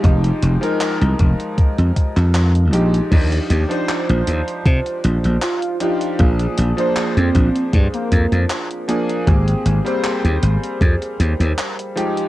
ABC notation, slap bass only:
X:1
M:4/4
L:1/16
Q:"Swing 16ths" 1/4=78
K:Ablyd
V:1 name="Slap bass" clef=bass
F,,, z F,,, z2 C,, F,,, z2 F,, z F,,3 B,,, z | E,, z E,, z2 B,,, E,, z C, z B,,, B,,, z4 | B,,, z B,,, z2 F,, B,,, z G,, z F,, F,, z4 | A,,, z A,,, z2 E,, A,,, z F,, z E,, E,, z4 |]